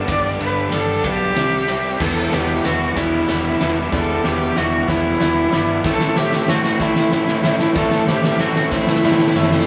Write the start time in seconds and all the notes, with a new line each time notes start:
Already playing: G3 B3 D4
0.07 G1 G2 D3 G3 B3 D4 G4 D5, kick, snare, ride
0.39 G1 G2 D3 G3 B3 D4 G4 B4, ride
0.72 G1 G2 D3 G3 B3 D4 G4 A4, snare, ride
1.03 B1 G2 D3 G3 B3 D4 G4 B4, kick, ride
1.35 C2 C3 G3 C4 G4 D5, snare, ride
1.67 C2 C3 G3 C4 G4 E5, ride
2.00 E1 E2 B2 E3 G3 B3 E4 A4, kick, snare, crash
2.32 E1 E2 B2 E3 G3 B3 E4 G4 B4, snare, ride
2.64 E1 E2 B2 E3 G3 B3 E4 F#4 B4, snare, ride
2.96 E1 E2 B2 E3 G3 B3 E4 D5, kick, snare, ride
3.28 E1 E2 B2 E3 G3 B3 E4, snare, ride
3.60 E1 E2 B2 E3 G3 B3 E4 E5, snare, ride
3.91 E1 E2 B2 E3 G3 B3 E4 A4 D5, kick, snare
4.24 E1 E2 B2 E3 G3 B3 E4 G4 B4, snare
4.56 E1 E2 B2 E3 G3 B3 E4 F#4, snare
4.88 E1 E2 B2 E3 G3 B3 E4 B4, kick, snare
5.20 E1 E2 B2 E3 G3 B3 E4 D5, snare
5.51 G1 E2 B2 E3 G3 B3 E4 E5, snare
5.84 A1 A2 E3 A3 C4 E4 A4, kick, snare
6.00 snare
6.16 A1 A2 E3 A3 C4 E4 G4 C5, snare
6.32 snare
6.48 A1 A2 E3 A3 C4 E4 F#4 C5, snare
6.64 snare
6.79 A1 A2 E3 A3 C4 E4 D5, kick, snare
6.96 snare
7.12 A1 A2 E3 A3 C4 E4, snare
7.28 snare
7.43 A1 A2 E3 A3 C4 E4 E5, snare
7.60 snare
7.75 A1 A2 E3 A3 C4 E4 A4 D5, kick, snare
7.91 snare
8.06 A1 A2 E3 A3 C4 G4 C5, snare
8.11 E4
8.24 snare
8.39 A1 A2 E3 A3 C4 E4 F#4, snare
8.56 snare
8.71 A1 A2 E3 A3 C4 E4 C5, kick, snare
8.87 snare
8.95 snare
9.03 A1 A2 E3 A3 C4 E4 D5, snare
9.12 snare
9.19 snare
9.27 snare
9.35 F#1 A2 E3 A3 C4 E4 E5, snare
9.43 snare
9.52 snare
9.60 snare